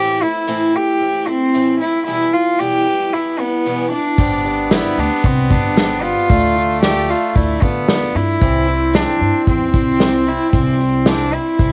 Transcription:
Already playing: twelve-string acoustic guitar A2 E3 A3 C4 E4, cello G4
0.21 twelve-string acoustic guitar A3 C4 E4, cello E4
0.47 twelve-string acoustic guitar A2 E3 A3 C4 E4
0.74 twelve-string acoustic guitar A3 C4 E4, cello G4
1.00 twelve-string acoustic guitar E3 A3 C4 E4
1.26 twelve-string acoustic guitar A3 C4 E4, cello C4
1.53 twelve-string acoustic guitar A2 E3 A3 C4 E4
1.80 twelve-string acoustic guitar A3 C4 E4, cello E4
2.07 twelve-string acoustic guitar E2 B2 E3 G3 B3 E4, cello E4
2.33 twelve-string acoustic guitar E3 G3 B3 E4, cello F4
2.59 twelve-string acoustic guitar E2 B2 E3 G3 B3 E4, cello G4
2.86 twelve-string acoustic guitar E3 G3 B3 E4
3.12 twelve-string acoustic guitar E3 G3 B3 E4, cello E4
3.38 twelve-string acoustic guitar E3 G3 B3 E4, cello B3
3.65 twelve-string acoustic guitar E2 B2 E3 G3 B3 E4
3.92 twelve-string acoustic guitar E3 G3 B3 E4, cello D4
4.18 upright bass G1, twelve-string acoustic guitar G2 D3 G3 C4 D4 G4, trumpet B3, kick, shaker
4.44 twelve-string acoustic guitar G3 C4 D4 G4, shaker
4.71 twelve-string acoustic guitar G2 D3 G3 C4 D4 G4, cello E4, snare, shaker
4.98 upright bass D2, twelve-string acoustic guitar G3 C4 D4 G4, cello D4, shaker
5.23 upright bass C2, twelve-string acoustic guitar G3 C4 D4 G4, cello C4, kick, shaker
5.50 upright bass G1, twelve-string acoustic guitar G3 C4 D4 G4, cello D4, kick, shaker
5.76 twelve-string acoustic guitar G2 D3 G3 C4 D4 G4, snare, shaker
6.03 twelve-string acoustic guitar G3 C4 D4 G4, cello F4, shaker
6.29 upright bass D2, twelve-string acoustic guitar D3 A3 D4 F4, trumpet A3, kick, shaker
6.56 twelve-string acoustic guitar A3 D4 F4, shaker
6.82 twelve-string acoustic guitar D3 A3 D4 F4, cello G4, snare, shaker
7.08 twelve-string acoustic guitar A3 D4 F4, cello F4, shaker
7.35 upright bass D2, twelve-string acoustic guitar D3 A3 D4 F4, cello E4, kick, shaker
7.62 upright bass D3, twelve-string acoustic guitar A3 D4 F4, cello B3, kick, shaker
7.88 twelve-string acoustic guitar D3 A3 D4 F4, snare, shaker
8.15 upright bass G2, twelve-string acoustic guitar A3 D4 F4, cello E4, shaker
8.41 upright bass C2, twelve-string acoustic guitar C3 E3 G3 C4 E4, trumpet C4, kick, shaker
8.67 twelve-string acoustic guitar G3 C4 E4, shaker
8.93 twelve-string acoustic guitar C3 E3 G3 C4 E4, cello D4, snare, shaker
9.20 upright bass G2, twelve-string acoustic guitar G3 C4 E4, shaker
9.46 upright bass E2, twelve-string acoustic guitar E3 G3 C4 E4, cello C4, kick, shaker
9.73 upright bass C2, twelve-string acoustic guitar G3 C4 E4, cello C4, kick, shaker
10.00 twelve-string acoustic guitar C3 E3 G3 C4 E4, snare, shaker
10.26 twelve-string acoustic guitar G3 C4 E4, cello E4, shaker
10.53 upright bass C2, twelve-string acoustic guitar C3 E3 G3 C4 E4, cello C4, kick, shaker
10.79 twelve-string acoustic guitar G3 C4 E4, shaker
11.06 twelve-string acoustic guitar C3 E3 G3 C4 E4, cello D4, snare, shaker
11.32 twelve-string acoustic guitar C4 E4, cello E4, shaker
11.59 upright bass C2, twelve-string acoustic guitar E3 G3 C4 E4, kick, shaker

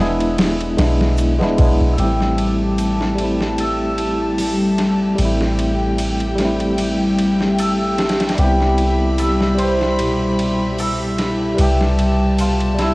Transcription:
Already playing: synth drone E3 E4, tine electric piano G#3, hammered dulcimer B4
0.00 808-style bass E1, tine electric piano B3 D4 E4, hammered dulcimer G#4
0.20 ride
0.38 snare, ride
0.61 ride
0.77 808-style bass B1, tine electric piano G#3 B3 D4, snare, ride
0.81 tine electric piano E4
1.01 snare
1.17 ride, shaker
1.39 808-style bass D1, tine electric piano G#3 B3 D4, snare
1.43 tine electric piano E4
1.57 808-style bass B1, tine electric piano G#3 B3 D4, kick, ride
1.61 tine electric piano E4
1.81 808-style bass B1
1.93 tine electric piano G3, hammered dulcimer A4
1.98 808-style bass A1, harp G3, synth drone G3 G4, tine electric piano A3 C4, string section G4 E5 A5, hammered dulcimer G4, ride
2.04 tine electric piano E4
2.21 snare
2.38 ride
2.78 harp A3, ride, shaker
3.01 snare
3.15 tine electric piano G3 A3, harp C4, ride
3.21 tine electric piano C4 E4
3.41 snare
3.58 hammered dulcimer A4, ride
3.98 harp E4, ride
4.38 harp G3, open hi-hat, shaker
4.78 snare, ride
5.15 808-style bass A1, tine electric piano G3 A3, harp A3, string section G5, ride
5.22 tine electric piano C4 E4
5.41 snare
5.58 harp C4, ride
5.98 ride, shaker
6.20 ride
6.35 tine electric piano G3 A3, harp E4, snare, ride
6.42 tine electric piano C4 E4
6.60 ride
6.78 harp G3, ride
7.18 ride
7.41 snare
7.58 harp A3, hammered dulcimer A4, ride, shaker
7.98 harp C4, snare, ride
8.09 snare, ride
8.20 snare, ride
8.29 snare, ride
8.35 808-style bass C2, tine electric piano G3 B3, hammered dulcimer G4, string section B5, ride
8.41 tine electric piano C4 E4
8.61 snare
8.78 harp E4, ride
9.18 harp G3, hammered dulcimer A4, ride, shaker
9.41 snare
9.54 tine electric piano G3 C5, ride
9.59 hammered dulcimer C5
9.64 tine electric piano E4
9.81 snare
9.99 harp B2, ride
10.39 harp C4, ride
10.78 hammered dulcimer A4, open hi-hat, shaker
11.18 harp E4, snare, ride
11.54 tine electric piano G3 B4
11.58 808-style bass C2, harp G3, hammered dulcimer G4, string section A5, ride
11.63 tine electric piano E5
11.81 snare
11.99 ride
12.38 harp B3, hammered dulcimer F4, ride, shaker
12.61 ride
12.75 tine electric piano G3, harp C4
12.79 hammered dulcimer E4, snare, ride
12.84 tine electric piano E4

